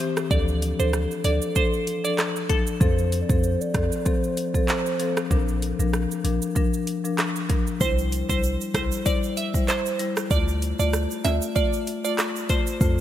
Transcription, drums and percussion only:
0.17 cross-stick, shaker
0.31 kick, shaker
0.48 shaker
0.62 closed hi-hat, shaker
0.80 shaker
0.93 cross-stick, shaker
1.11 shaker
1.24 closed hi-hat, shaker
1.42 shaker
1.56 kick, shaker
1.73 shaker
1.87 closed hi-hat, shaker
2.05 shaker
2.18 cross-stick, clap, shaker
2.36 shaker
2.49 kick, closed hi-hat, shaker
2.67 shaker
2.81 kick, shaker
2.98 shaker
3.12 closed hi-hat, shaker
3.30 kick, shaker
3.43 shaker
3.61 shaker
3.74 kick, cross-stick, closed hi-hat, shaker
3.92 shaker
4.06 kick, shaker
4.24 shaker
4.37 closed hi-hat, shaker
4.54 kick, shaker
4.68 clap, shaker
4.86 shaker
5.00 closed hi-hat, shaker
5.17 cross-stick, shaker
5.31 kick, shaker
5.48 shaker
5.62 closed hi-hat, shaker
5.80 shaker
5.93 cross-stick, shaker
6.11 shaker
6.25 closed hi-hat, shaker
6.42 shaker
6.56 kick, shaker
6.74 shaker
6.87 closed hi-hat, shaker
7.05 shaker
7.18 cross-stick, clap, shaker
7.36 shaker
7.50 kick, closed hi-hat, shaker
7.67 shaker
7.81 kick, shaker
7.98 shaker
8.12 closed hi-hat, shaker
8.29 kick, shaker
8.43 shaker
8.61 shaker
8.74 kick, cross-stick, closed hi-hat, shaker
8.92 shaker
9.06 kick, shaker
9.23 shaker
9.37 closed hi-hat, shaker
9.54 kick, shaker
9.68 clap, shaker
9.86 shaker
9.99 closed hi-hat, shaker
10.17 cross-stick, shaker
10.31 kick, shaker
10.48 shaker
10.62 closed hi-hat, shaker
10.79 shaker
10.93 cross-stick, shaker
11.11 shaker
11.25 closed hi-hat, high timbale, shaker
11.42 shaker
11.56 kick, shaker
11.73 shaker
11.87 closed hi-hat, shaker
12.05 shaker
12.18 cross-stick, clap, shaker
12.36 shaker
12.49 kick, closed hi-hat, shaker
12.67 shaker
12.81 kick, shaker

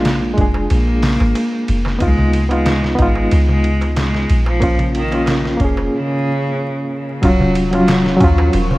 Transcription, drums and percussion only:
0.05 snare, ride, darbuka tek
0.22 darbuka tek
0.38 kick, ride
0.54 darbuka tek
0.70 ride, darbuka tek
0.88 darbuka tek
1.03 snare, open hi-hat
1.20 darbuka tek
1.35 ride, darbuka tek
1.52 darbuka tek
1.68 ride
1.85 snare, darbuka tek
2.00 kick, ride, darbuka tek
2.18 darbuka tek, darbuka dum
2.33 ride
2.51 ride, darbuka tek
2.66 snare, ride, darbuka tek
2.82 snare, darbuka tek
2.99 kick, ride
3.15 darbuka tek
3.31 ride, darbuka tek
3.48 darbuka tek, darbuka dum
3.64 ride
3.81 ride, darbuka tek
3.96 snare, ride, darbuka tek
4.14 snare, darbuka tek
4.30 ride
4.46 darbuka tek
4.61 kick, ride, darbuka tek
4.79 ride, darbuka tek, darbuka dum
4.95 ride
5.12 ride, darbuka tek
5.26 snare, ride, darbuka tek
5.44 snare, darbuka tek
5.60 kick, ride
5.77 darbuka tek
7.23 kick, ride, darbuka tek
7.40 darbuka tek, darbuka dum
7.55 ride
7.73 ride, darbuka tek
7.88 snare, ride, darbuka tek
8.05 snare, darbuka tek
8.21 kick, ride
8.38 darbuka tek
8.53 ride, darbuka tek
8.71 darbuka tek, darbuka dum

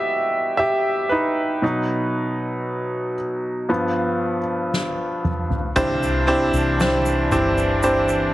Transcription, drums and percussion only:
4.73 snare
5.24 mid tom
5.50 floor tom
5.76 kick, floor tom, crash, shaker
6.03 shaker
6.54 shaker
6.80 snare, shaker
7.06 shaker
7.31 floor tom, shaker
7.58 shaker
7.83 shaker
8.09 shaker

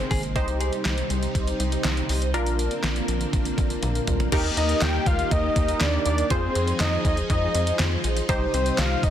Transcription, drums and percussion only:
0.11 kick, open hi-hat
0.23 closed hi-hat
0.36 kick, closed hi-hat
0.48 closed hi-hat
0.61 closed hi-hat
0.73 closed hi-hat
0.85 snare, clap, closed hi-hat
0.98 closed hi-hat
1.10 closed hi-hat
1.23 closed hi-hat
1.35 kick, closed hi-hat
1.47 closed hi-hat
1.60 closed hi-hat
1.72 closed hi-hat
1.84 snare, clap, closed hi-hat
1.97 closed hi-hat
2.09 open hi-hat
2.22 closed hi-hat
2.34 closed hi-hat
2.46 closed hi-hat
2.59 closed hi-hat
2.71 closed hi-hat
2.84 snare, clap, closed hi-hat
2.96 closed hi-hat
3.08 closed hi-hat
3.21 closed hi-hat
3.33 kick, closed hi-hat
3.45 closed hi-hat
3.58 kick, closed hi-hat
3.70 closed hi-hat
3.83 closed hi-hat, high tom
3.95 closed hi-hat
4.07 closed hi-hat, mid tom
4.20 closed hi-hat, floor tom
4.32 kick, closed hi-hat, crash
4.57 closed hi-hat
4.69 closed hi-hat
4.82 snare, clap, closed hi-hat
5.06 kick, closed hi-hat
5.19 closed hi-hat
5.31 kick, closed hi-hat
5.56 kick, closed hi-hat
5.68 closed hi-hat
5.81 snare, clap, closed hi-hat
6.06 closed hi-hat
6.18 closed hi-hat
6.30 kick, closed hi-hat
6.55 closed hi-hat
6.67 closed hi-hat
6.80 snare, clap, closed hi-hat
7.05 kick, closed hi-hat
7.17 closed hi-hat
7.30 kick, closed hi-hat
7.55 closed hi-hat
7.67 closed hi-hat
7.79 snare, clap, closed hi-hat
8.04 closed hi-hat
8.17 closed hi-hat
8.29 kick, closed hi-hat
8.54 closed hi-hat
8.66 closed hi-hat
8.78 snare, clap, closed hi-hat
9.03 kick, closed hi-hat

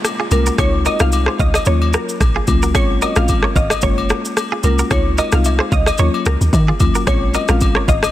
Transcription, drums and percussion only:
0.04 cross-stick, high agogo, shaker
0.31 high agogo, shaker
0.46 shaker
0.58 kick, cross-stick, high agogo, shaker
0.85 high agogo, shaker
1.00 cross-stick, shaker
1.12 high agogo, shaker
1.26 cross-stick
1.39 kick, shaker
1.54 cross-stick, high agogo, shaker
1.65 shaker
1.82 high agogo
1.93 cross-stick, shaker
2.09 shaker
2.20 kick, cross-stick, high agogo, shaker
2.47 kick, high agogo, shaker
2.63 shaker
2.75 kick, cross-stick, high agogo, shaker
3.02 high agogo, shaker
3.16 cross-stick, shaker
3.28 kick, high agogo, shaker
3.43 cross-stick
3.56 kick, shaker
3.70 cross-stick, high agogo, shaker
3.81 kick, shaker
3.98 high agogo
4.10 cross-stick, shaker
4.25 shaker
4.37 cross-stick, high agogo, shaker
4.63 high agogo, shaker
4.79 shaker
4.91 kick, cross-stick, high agogo, shaker
5.18 high agogo, shaker
5.32 cross-stick, shaker
5.45 high agogo, low woodblock, shaker
5.59 cross-stick
5.72 kick, shaker
5.86 cross-stick, high agogo, shaker
5.98 shaker
6.14 high agogo
6.26 cross-stick, shaker
6.41 shaker
6.53 kick, high agogo, low woodblock, shaker
6.80 kick, high agogo, shaker
6.95 shaker
7.07 kick, cross-stick, high agogo, shaker
7.34 high agogo, shaker
7.48 cross-stick, shaker
7.61 kick, high agogo, shaker
7.75 cross-stick
7.88 kick, shaker
8.03 cross-stick, high agogo, shaker

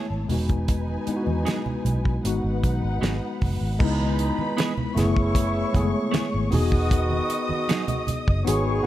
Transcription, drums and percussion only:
0.29 open hi-hat, high conga, low conga
0.49 kick, closed hi-hat
0.68 kick, closed hi-hat
0.88 high conga
1.07 closed hi-hat
1.27 high conga
1.46 snare, closed hi-hat
1.66 low conga
1.85 closed hi-hat, muted conga, low conga
2.05 kick
2.25 closed hi-hat, high conga
2.63 kick, closed hi-hat, high conga
3.03 snare, closed hi-hat, muted conga, high conga
3.42 kick, open hi-hat, muted conga, high conga, low conga
3.80 kick, crash, muted conga
4.00 high conga
4.18 closed hi-hat, muted conga
4.39 high conga
4.58 snare, closed hi-hat
4.77 low conga
4.97 snare, closed hi-hat, low conga
5.17 kick
5.35 kick, closed hi-hat, high conga
5.74 kick, closed hi-hat, muted conga, high conga
6.14 snare, closed hi-hat, muted conga, high conga
6.52 open hi-hat, muted conga, high conga, low conga
6.72 kick
6.91 kick, closed hi-hat, muted conga
7.10 high conga
7.30 closed hi-hat, muted conga
7.49 high conga
7.68 snare, closed hi-hat, muted conga
7.88 closed hi-hat, low conga
8.07 closed hi-hat, low conga
8.28 kick
8.46 closed hi-hat, muted conga, high conga

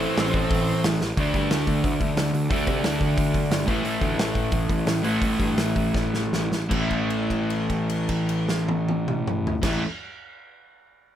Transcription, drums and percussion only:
0.17 snare, open hi-hat
0.34 kick
0.51 kick, open hi-hat
0.84 snare, open hi-hat
1.01 snare
1.17 kick, open hi-hat
1.34 kick, open hi-hat
1.51 snare, open hi-hat
1.67 kick, open hi-hat
1.84 kick, open hi-hat
2.01 kick, open hi-hat
2.17 snare, open hi-hat
2.34 open hi-hat
2.51 kick, open hi-hat
2.67 kick, open hi-hat
2.84 snare, open hi-hat
3.01 kick, open hi-hat
3.18 kick, open hi-hat
3.34 kick, open hi-hat
3.51 snare, open hi-hat
3.68 kick, open hi-hat
3.85 open hi-hat
4.01 kick, open hi-hat
4.19 snare, open hi-hat
4.35 kick, open hi-hat
4.52 kick, open hi-hat
4.69 kick, open hi-hat
4.87 snare, open hi-hat
5.04 open hi-hat
5.22 kick, open hi-hat
5.40 kick, open hi-hat
5.58 snare, open hi-hat
5.76 kick, open hi-hat
5.94 kick, snare
6.14 snare
6.33 snare
6.52 snare
6.71 kick, crash
6.91 kick, crash
7.10 crash
7.30 kick, crash
7.50 crash
7.70 kick, crash
7.90 crash
8.09 kick, crash
8.29 crash
8.49 snare
8.69 high tom
8.88 high tom
9.08 mid tom
9.27 mid tom
9.47 floor tom
9.63 kick, snare, crash

